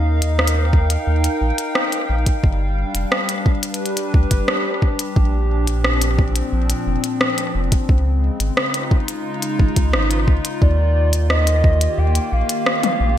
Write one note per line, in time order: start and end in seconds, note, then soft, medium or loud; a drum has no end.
0.00 0.97 D#2 medium
0.00 2.44 D#4 medium
0.00 0.80 D#5 medium
0.00 3.53 F5 medium
0.07 2.44 A#4 medium
0.22 closed hi-hat medium
0.39 cross-stick loud
0.47 closed hi-hat medium
0.62 3.29 G5 medium
0.73 kick loud
0.90 closed hi-hat medium
1.07 1.28 D#2 medium
1.24 closed hi-hat medium
1.41 1.52 A#1 medium
1.58 closed hi-hat medium
1.75 cross-stick loud
1.92 closed hi-hat soft
2.09 2.31 A#1 medium
2.26 kick loud
2.26 closed hi-hat medium
2.44 2.84 G1 loud
2.44 5.16 G3 medium
2.44 kick loud
2.80 7.89 D4 medium
2.95 3.05 F1 loud
2.95 closed hi-hat medium
3.12 cross-stick loud
3.29 closed hi-hat medium
3.46 kick loud
3.63 6.25 G4 medium
3.63 5.16 B4 medium
3.63 closed hi-hat medium
3.74 closed hi-hat medium
3.86 closed hi-hat soft
3.97 closed hi-hat medium
4.14 4.25 D2 medium
4.14 kick loud
4.31 4.42 G1 medium
4.31 kick loud
4.31 closed hi-hat medium
4.48 cross-stick loud
4.82 kick loud
4.99 closed hi-hat medium
5.16 6.42 A#1 medium
5.16 7.89 A#2 medium
5.16 kick loud
5.30 7.89 F3 medium
5.67 closed hi-hat medium
5.84 8.98 C4 medium
5.84 cross-stick loud
6.02 closed hi-hat medium
6.19 kick loud
6.36 closed hi-hat medium
6.53 6.74 A#1 medium
6.70 closed hi-hat medium
6.87 6.97 F1 medium
7.04 closed hi-hat medium
7.21 cross-stick loud
7.38 closed hi-hat soft
7.55 7.76 F1 medium
7.72 kick loud
7.72 closed hi-hat medium
7.89 8.30 C#2 loud
7.89 10.62 C#3 medium
7.89 kick loud
8.15 10.62 G#3 medium
8.40 8.51 G#1 loud
8.40 closed hi-hat medium
8.57 cross-stick loud
8.73 11.71 D#4 medium
8.73 closed hi-hat soft
8.79 13.18 F4 medium
8.91 kick loud
9.08 closed hi-hat medium
9.42 closed hi-hat soft
9.59 9.70 G#1 medium
9.59 kick loud
9.76 9.95 C#2 medium
9.76 kick loud
9.76 closed hi-hat medium
9.93 10.29 G#1 medium
9.93 cross-stick loud
10.11 closed hi-hat soft
10.28 10.38 C#2 medium
10.28 kick loud
10.45 closed hi-hat medium
10.62 11.88 D#2 medium
10.62 13.18 D#3 medium
10.62 11.26 D5 loud
10.62 kick loud
11.13 closed hi-hat medium
11.30 12.00 D#5 loud
11.30 cross-stick loud
11.39 13.18 A#3 medium
11.47 closed hi-hat soft
11.64 kick loud
11.81 13.18 G4 medium
11.81 closed hi-hat medium
11.98 12.19 D#2 medium
11.98 12.34 G5 loud
12.15 closed hi-hat soft
12.32 12.43 A#1 medium
12.32 13.18 F5 loud
12.49 closed hi-hat medium
12.66 cross-stick loud
12.83 closed hi-hat soft
12.83 high tom medium
13.00 13.18 A#1 medium